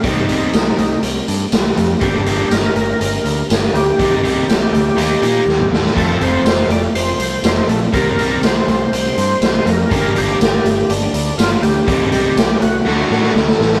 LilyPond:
<<
  \new Staff \with { instrumentName = "Tonewheel organ" } { \time 4/4 \key c \dorian \tempo 4 = 122 ees'2 r2 | g'4 bes'8 bes'8 bes'4 r8 g'8~ | g'4. g'2 r8 | a'8 c''4 d''8 c''4 c''8 a'8 |
bes'4 c''2~ c''8 bes'8~ | bes'8 g'4. d'4 f'8 g'8~ | g'8 g'4 fis'4. r4 | }
  \new Staff \with { instrumentName = "Steel-string acoustic guitar" } { \time 4/4 \key c \dorian <c g c' ees' g'>8 <g c' ees' g'>16 <c' ees' g'>16 <c g c' ees' g'>8 <g c' ees' g'>16 <c' ees' g'>8 <c' ees' g'>16 <g c' ees' g'>8 <c g c' ees' g'>8. <c' ees' g'>16 | <g, d g bes d' g'>16 <g bes d' g'>16 <g bes d' g'>16 <g bes d' g'>16 <g, d g bes d' g'>8 <g bes d' g'>16 <g bes d' g'>8 <g bes d' g'>16 <g bes d' g'>8 <g, d g bes d' g'>8. <g bes d' g'>16 | <c g c' ees' g'>16 <c' ees' g'>16 <g c' ees' g'>16 <c' ees' g'>16 <c g c' ees' g'>8 <g c' ees' g'>8 <ees g bes ees' g'>16 <bes ees' g'>16 <g bes ees' g'>8 <ees g bes ees' g'>8. <bes ees' g'>16 | <f c' f' a'>8 <f c' f' a'>16 <c' f' a'>16 <f c' f' a'>8 <f c' f' a'>16 <c' f' a'>8 <c' f' a'>16 <f c' f' a'>8 <f c' f' a'>8. <c' f' a'>16 |
<c g c' ees' g'>16 <c' ees' g'>16 <g c' ees' g'>16 <c' ees' g'>16 <c g c' ees' g'>8 <g c' ees' g'>16 <c' ees' g'>8 <c' ees' g'>16 <g c' ees' g'>8 <c g c' ees' g'>8. <c' ees' g'>16 | <g, d g bes d' g'>8 <g bes d' g'>16 <g bes d'>16 <g, d g bes d' g'>8 <g bes d' g'>16 <g bes d' g'>8 <g bes d' g'>16 <g bes d' g'>8 <g, d g bes d' g'>8. <g bes d' g'>16 | <c g c' ees' g'>16 <c' ees' g'>16 <g ees'>16 <c' ees' g'>16 <c g c' ees' g'>8 <g c' ees' g'>16 <c' ees' g'>16 <d a d' fis' a'>16 <d' fis' a'>16 a'8 <d a d' fis' a'>8. <d' fis' a'>16 | }
  \new Staff \with { instrumentName = "Distorted electric guitar" } { \clef bass \time 4/4 \key c \dorian <c ees g c' g'>8 <c ees g c' g'>8 r2. | <g, d g bes d' g'>8 <g, d g bes d' g'>8 r2. | <c ees g ees' g'>8 <c ees g ees' g'>8 r4 <ees bes ees' g'>8 <ees bes ees' g'>8 r4 | <f, c f a c' f'>8 <f, c f a c' f'>8 r2. |
<c ees g c' g'>8 <c ees g c' g'>8 r2. | <g, d g bes d' g'>8 <g, d g bes d' g'>8 r2. | <c ees g ees' g'>8 <c ees g ees' g'>8 r4 <d a d' fis'>8 <d a d' fis'>8 r4 | }
  \new Staff \with { instrumentName = "Overdriven electric guitar" } { \clef bass \time 4/4 \key c \dorian <c ees g c' g'>8 <c ees g c' g'>8 r2. | <g, d g bes d' g'>8 <g, d g bes d' g'>8 r2. | <c ees g ees' g'>8 <c ees g ees' g'>8 r4 <ees bes ees' g'>8 <ees bes ees' g'>8 r4 | <f, c f a c' f'>8 <f, c f a c' f'>8 r2. |
<c ees g c' g'>8 <c ees g c' g'>8 r2. | <g, d g bes d' g'>8 <g, d g bes d' g'>8 r2. | <c ees g ees' g'>8 <c ees g ees' g'>8 r4 <d a d' fis'>8 <d a d' fis'>8 r4 | }
  \new Staff \with { instrumentName = "Picked electric bass" } { \clef bass \time 4/4 \key c \dorian c,8 c,8 c,8 c,8 c,8 g,8 c,8 f,8 | g,,8 g,,8 g,,8 g,,8 g,,8 d,8 g,,8 d,8 | c,8 c,8 c,8 d,8 ees,8 bes,8 ees,8 ees,8 | f,,8 f,,8 f,,8 f,,8 f,,8 c,8 f,,8 bes,,8 |
c,8 c,8 c,8 c,8 c,8 g,8 c,8 f,8 | g,,8 g,,8 g,,8 g,,8 g,,8 d,8 g,,8 d,8 | c,8 c,8 c,8 c,8 d,8 a,8 d,8 a,,8 | }
  \new DrumStaff \with { instrumentName = "Drums" } \drummode { \time 4/4 <hh bd>8 hh8 <hh sn tamb>8 hh8 hh8 hh8 <hh sn tamb>8 hh8 | <hh bd>8 hh8 <hh sn tamb>8 hh8 hh8 hh8 <hh sn tamb>8 hh8 | <hh bd>8 hh8 <hh sn tamb>8 hh8 hh8 hh8 sn16 toml16 sn16 sn16 | <cymc hh bd>8 hh8 <hh sn tamb>8 hh8 hh8 hh8 <hh sn tamb>8 hh8 |
<hh bd>8 hh8 <hh sn tamb>8 hh8 hh8 hh8 <hh sn tamb>8 hh8 | <hh bd>8 hh8 <hh sn tamb>8 hh8 hh8 hh8 <hh sn tamb>8 hh8 | <hh bd>8 hh8 <hh sn tamb>8 hh8 sn16 sn16 sn16 sn16 sn16 sn16 sn16 sn16 | }
>>